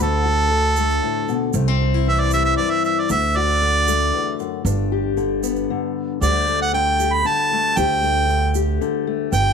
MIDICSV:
0, 0, Header, 1, 5, 480
1, 0, Start_track
1, 0, Tempo, 519031
1, 1428, Time_signature, 3, 2, 24, 8
1, 8814, End_track
2, 0, Start_track
2, 0, Title_t, "Harmonica"
2, 0, Program_c, 0, 22
2, 23, Note_on_c, 0, 69, 100
2, 1408, Note_off_c, 0, 69, 0
2, 1929, Note_on_c, 0, 76, 84
2, 2042, Note_on_c, 0, 74, 83
2, 2056, Note_off_c, 0, 76, 0
2, 2147, Note_off_c, 0, 74, 0
2, 2159, Note_on_c, 0, 76, 84
2, 2260, Note_off_c, 0, 76, 0
2, 2266, Note_on_c, 0, 76, 84
2, 2368, Note_off_c, 0, 76, 0
2, 2374, Note_on_c, 0, 74, 85
2, 2501, Note_on_c, 0, 76, 79
2, 2514, Note_off_c, 0, 74, 0
2, 2615, Note_off_c, 0, 76, 0
2, 2633, Note_on_c, 0, 76, 76
2, 2773, Note_on_c, 0, 74, 71
2, 2787, Note_off_c, 0, 76, 0
2, 2870, Note_off_c, 0, 74, 0
2, 2876, Note_on_c, 0, 76, 92
2, 3118, Note_on_c, 0, 74, 100
2, 3132, Note_off_c, 0, 76, 0
2, 4043, Note_off_c, 0, 74, 0
2, 5758, Note_on_c, 0, 74, 93
2, 6087, Note_off_c, 0, 74, 0
2, 6120, Note_on_c, 0, 78, 84
2, 6225, Note_off_c, 0, 78, 0
2, 6233, Note_on_c, 0, 79, 96
2, 6598, Note_on_c, 0, 83, 92
2, 6612, Note_off_c, 0, 79, 0
2, 6716, Note_on_c, 0, 81, 91
2, 6730, Note_off_c, 0, 83, 0
2, 7191, Note_on_c, 0, 79, 96
2, 7205, Note_off_c, 0, 81, 0
2, 7909, Note_off_c, 0, 79, 0
2, 8627, Note_on_c, 0, 79, 97
2, 8814, Note_off_c, 0, 79, 0
2, 8814, End_track
3, 0, Start_track
3, 0, Title_t, "Steel-string acoustic guitar"
3, 0, Program_c, 1, 25
3, 0, Note_on_c, 1, 38, 68
3, 0, Note_on_c, 1, 50, 55
3, 0, Note_on_c, 1, 57, 54
3, 0, Note_on_c, 1, 62, 55
3, 6, Note_on_c, 1, 66, 61
3, 223, Note_off_c, 1, 66, 0
3, 235, Note_on_c, 1, 66, 58
3, 460, Note_off_c, 1, 50, 0
3, 471, Note_on_c, 1, 50, 68
3, 713, Note_off_c, 1, 57, 0
3, 722, Note_on_c, 1, 57, 60
3, 949, Note_on_c, 1, 45, 61
3, 1185, Note_off_c, 1, 45, 0
3, 1189, Note_on_c, 1, 47, 72
3, 1402, Note_off_c, 1, 66, 0
3, 1405, Note_off_c, 1, 62, 0
3, 1406, Note_off_c, 1, 57, 0
3, 1424, Note_off_c, 1, 47, 0
3, 1425, Note_off_c, 1, 38, 0
3, 1428, Note_on_c, 1, 48, 67
3, 1429, Note_off_c, 1, 50, 0
3, 1431, Note_on_c, 1, 57, 60
3, 1551, Note_off_c, 1, 57, 0
3, 1551, Note_on_c, 1, 60, 57
3, 1679, Note_on_c, 1, 62, 65
3, 1794, Note_off_c, 1, 62, 0
3, 1794, Note_on_c, 1, 64, 50
3, 1908, Note_off_c, 1, 48, 0
3, 1916, Note_on_c, 1, 52, 61
3, 2163, Note_on_c, 1, 55, 64
3, 2385, Note_on_c, 1, 43, 64
3, 2837, Note_off_c, 1, 43, 0
3, 2842, Note_off_c, 1, 52, 0
3, 2864, Note_on_c, 1, 38, 68
3, 2868, Note_off_c, 1, 60, 0
3, 2870, Note_off_c, 1, 64, 0
3, 2874, Note_on_c, 1, 62, 58
3, 2875, Note_off_c, 1, 55, 0
3, 3113, Note_on_c, 1, 66, 62
3, 3345, Note_on_c, 1, 50, 65
3, 3591, Note_on_c, 1, 57, 62
3, 3821, Note_off_c, 1, 38, 0
3, 3825, Note_on_c, 1, 40, 64
3, 4062, Note_off_c, 1, 40, 0
3, 4066, Note_on_c, 1, 42, 72
3, 4280, Note_off_c, 1, 57, 0
3, 4280, Note_off_c, 1, 66, 0
3, 4300, Note_off_c, 1, 42, 0
3, 4304, Note_on_c, 1, 43, 75
3, 4306, Note_off_c, 1, 62, 0
3, 4310, Note_on_c, 1, 62, 59
3, 4550, Note_on_c, 1, 67, 66
3, 4771, Note_off_c, 1, 50, 0
3, 4782, Note_on_c, 1, 50, 71
3, 5022, Note_on_c, 1, 59, 63
3, 5262, Note_off_c, 1, 50, 0
3, 5273, Note_on_c, 1, 50, 66
3, 5715, Note_off_c, 1, 59, 0
3, 5716, Note_off_c, 1, 43, 0
3, 5719, Note_off_c, 1, 62, 0
3, 5719, Note_off_c, 1, 67, 0
3, 5721, Note_off_c, 1, 50, 0
3, 5747, Note_on_c, 1, 38, 72
3, 5756, Note_on_c, 1, 50, 59
3, 5761, Note_on_c, 1, 55, 58
3, 5766, Note_on_c, 1, 57, 59
3, 5774, Note_on_c, 1, 67, 64
3, 5995, Note_off_c, 1, 57, 0
3, 5998, Note_on_c, 1, 57, 55
3, 6224, Note_off_c, 1, 50, 0
3, 6228, Note_on_c, 1, 50, 69
3, 6470, Note_off_c, 1, 67, 0
3, 6474, Note_on_c, 1, 67, 76
3, 6692, Note_off_c, 1, 50, 0
3, 6703, Note_on_c, 1, 50, 69
3, 6946, Note_off_c, 1, 57, 0
3, 6957, Note_on_c, 1, 57, 65
3, 7183, Note_off_c, 1, 38, 0
3, 7194, Note_on_c, 1, 38, 73
3, 7196, Note_off_c, 1, 67, 0
3, 7200, Note_on_c, 1, 67, 71
3, 7424, Note_off_c, 1, 57, 0
3, 7435, Note_on_c, 1, 57, 65
3, 7656, Note_off_c, 1, 50, 0
3, 7667, Note_on_c, 1, 50, 69
3, 7906, Note_off_c, 1, 67, 0
3, 7910, Note_on_c, 1, 67, 72
3, 8138, Note_off_c, 1, 50, 0
3, 8149, Note_on_c, 1, 50, 63
3, 8379, Note_off_c, 1, 57, 0
3, 8390, Note_on_c, 1, 57, 65
3, 8614, Note_off_c, 1, 38, 0
3, 8618, Note_on_c, 1, 43, 73
3, 8623, Note_off_c, 1, 67, 0
3, 8627, Note_on_c, 1, 67, 63
3, 8629, Note_off_c, 1, 57, 0
3, 8814, Note_off_c, 1, 43, 0
3, 8814, Note_off_c, 1, 50, 0
3, 8814, Note_off_c, 1, 55, 0
3, 8814, Note_off_c, 1, 67, 0
3, 8814, End_track
4, 0, Start_track
4, 0, Title_t, "Upright bass"
4, 0, Program_c, 2, 32
4, 0, Note_on_c, 2, 38, 85
4, 908, Note_off_c, 2, 38, 0
4, 1423, Note_on_c, 2, 36, 86
4, 2347, Note_off_c, 2, 36, 0
4, 2866, Note_on_c, 2, 38, 93
4, 3789, Note_off_c, 2, 38, 0
4, 4297, Note_on_c, 2, 31, 93
4, 5224, Note_off_c, 2, 31, 0
4, 5747, Note_on_c, 2, 38, 95
4, 6670, Note_off_c, 2, 38, 0
4, 7187, Note_on_c, 2, 38, 102
4, 8110, Note_off_c, 2, 38, 0
4, 8623, Note_on_c, 2, 31, 91
4, 8814, Note_off_c, 2, 31, 0
4, 8814, End_track
5, 0, Start_track
5, 0, Title_t, "Drums"
5, 706, Note_on_c, 9, 82, 81
5, 799, Note_off_c, 9, 82, 0
5, 835, Note_on_c, 9, 82, 28
5, 927, Note_off_c, 9, 82, 0
5, 1188, Note_on_c, 9, 82, 29
5, 1281, Note_off_c, 9, 82, 0
5, 1418, Note_on_c, 9, 82, 94
5, 1510, Note_off_c, 9, 82, 0
5, 2137, Note_on_c, 9, 82, 88
5, 2229, Note_off_c, 9, 82, 0
5, 2263, Note_on_c, 9, 82, 28
5, 2356, Note_off_c, 9, 82, 0
5, 2628, Note_on_c, 9, 82, 29
5, 2721, Note_off_c, 9, 82, 0
5, 2862, Note_on_c, 9, 82, 99
5, 2955, Note_off_c, 9, 82, 0
5, 3587, Note_on_c, 9, 82, 106
5, 3679, Note_off_c, 9, 82, 0
5, 3699, Note_on_c, 9, 82, 32
5, 3791, Note_off_c, 9, 82, 0
5, 4065, Note_on_c, 9, 82, 31
5, 4158, Note_off_c, 9, 82, 0
5, 4309, Note_on_c, 9, 82, 104
5, 4402, Note_off_c, 9, 82, 0
5, 4785, Note_on_c, 9, 82, 33
5, 4877, Note_off_c, 9, 82, 0
5, 5025, Note_on_c, 9, 82, 94
5, 5118, Note_off_c, 9, 82, 0
5, 5143, Note_on_c, 9, 82, 33
5, 5235, Note_off_c, 9, 82, 0
5, 5756, Note_on_c, 9, 82, 87
5, 5848, Note_off_c, 9, 82, 0
5, 5989, Note_on_c, 9, 82, 28
5, 6082, Note_off_c, 9, 82, 0
5, 6237, Note_on_c, 9, 82, 31
5, 6329, Note_off_c, 9, 82, 0
5, 6470, Note_on_c, 9, 82, 89
5, 6563, Note_off_c, 9, 82, 0
5, 6709, Note_on_c, 9, 82, 34
5, 6801, Note_off_c, 9, 82, 0
5, 7185, Note_on_c, 9, 82, 102
5, 7278, Note_off_c, 9, 82, 0
5, 7428, Note_on_c, 9, 82, 29
5, 7520, Note_off_c, 9, 82, 0
5, 7671, Note_on_c, 9, 82, 32
5, 7763, Note_off_c, 9, 82, 0
5, 7903, Note_on_c, 9, 82, 88
5, 7996, Note_off_c, 9, 82, 0
5, 8153, Note_on_c, 9, 82, 31
5, 8245, Note_off_c, 9, 82, 0
5, 8627, Note_on_c, 9, 82, 87
5, 8719, Note_off_c, 9, 82, 0
5, 8814, End_track
0, 0, End_of_file